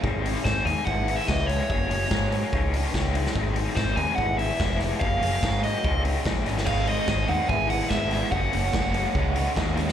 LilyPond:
<<
  \new Staff \with { instrumentName = "Overdriven electric guitar" } { \time 4/4 \key aes \mixolydian \tempo 4 = 145 r4 c''8 aes''8 ges''8. e''16 ees''8 des''8~ | des''2~ des''8 r4. | r4 c''8 aes''8 ges''8 e''4 r8 | f''4. ees''4 r4. |
f''8 ees''8 ees''8 ges''8 gis''8 ges''8 e''4 | ges''2. r4 | }
  \new Staff \with { instrumentName = "Overdriven electric guitar" } { \clef bass \time 4/4 \key aes \mixolydian <aes, ees aes c' ees'>8 <aes, ees aes c' ees'>8 <aes, ees aes c' ees'>8 <aes, ees aes c' ees'>8 <gis, e gis b e'>8 <gis, e gis b e'>8 <gis, e gis b e'>8 <gis, e gis b e'>8 | <ges, des ges bes des'>8 <ges, des ges bes des'>8 <ges, des ges bes des'>8 <ges, des ges bes des'>8 <des aes des' ees'>8 <des aes des' ees'>8 <des aes des' ees'>8 <des aes des' ees'>8 | <aes, ees aes c' ees'>8 <aes, ees aes c' ees'>8 <aes, ees aes c' ees'>8 <aes, ees aes c' ees'>8 <gis, e gis b e'>8 <gis, e gis b e'>8 <gis, e gis b e'>8 <gis, e gis b e'>8 | <ges, des ges bes des'>8 <ges, des ges bes des'>8 <ges, des ges bes des'>8 <ges, des ges bes des'>8 <des aes des' ees'>8 <des aes des' ees'>8 <des aes des' ees'>8 <des aes des' ees'>8 |
<aes, ees aes c' ees'>8 <aes, ees aes c' ees'>8 <aes, ees aes c' ees'>8 <aes, ees aes c' ees'>8 <gis, e gis b e'>8 <gis, e gis b e'>8 <gis, e gis b e'>8 <gis, e gis b e'>8 | <ges, des ges bes des'>8 <ges, des ges bes des'>8 <ges, des ges bes des'>8 <ges, des ges bes des'>8 <des aes des' ees'>8 <des aes des' ees'>8 <des aes des' ees'>8 <des aes des' ees'>8 | }
  \new Staff \with { instrumentName = "Overdriven electric guitar" } { \clef bass \time 4/4 \key aes \mixolydian r1 | r1 | r1 | r1 |
<aes, ees aes c' ees'>8 <aes, ees aes c' ees'>8 <aes, ees aes c' ees'>8 <aes, ees aes c' ees'>8 <gis, e gis b e'>8 <gis, e gis b e'>8 <gis, e gis b e'>8 <gis, e gis b e'>8 | <ges, des ges bes des'>8 <ges, des ges bes des'>8 <ges, des ges bes des'>8 <ges, des ges bes des'>8 <des aes des' ees'>8 <des aes des' ees'>8 <des aes des' ees'>8 <des aes des' ees'>8 | }
  \new Staff \with { instrumentName = "Picked electric bass" } { \clef bass \time 4/4 \key aes \mixolydian aes,,4 aes,,8 ees,16 r16 gis,,4 des,4 | ges,,8 ges,,8 aes,4 des,4 des,4 | aes,,4 aes,,8 ees,16 r16 gis,,4 f,,4 | ges,,8 ges,,8 aes,4 des,4 bes,,8 aes,,8 |
aes,,4 aes,,8 ees,16 r16 gis,,4 gis,,4 | ges,,8 ges,,8 ges,,4 des,4 ees,4 | }
  \new DrumStaff \with { instrumentName = "Drums" } \drummode { \time 4/4 bd8 hho8 <bd sn>8 hho8 bd8 hho8 <bd sn>8 <hho sn>8 | bd8 hho8 <bd sn>8 hho8 bd8 hho8 <bd sn>8 hho16 sn16 | bd8 hho8 <bd sn>8 hho8 bd8 hho8 <bd sn>8 <hho sn>8 | bd8 hho8 <bd sn>8 hho8 bd8 hho8 <bd sn>8 <hho sn>16 sn16 |
<cymc bd>8 hho8 <bd sn>8 hho8 bd8 hho8 <bd sn>8 <hho sn>8 | bd8 hho8 <bd sn>8 hho8 bd8 hho8 <bd sn>8 <hho sn>16 sn16 | }
>>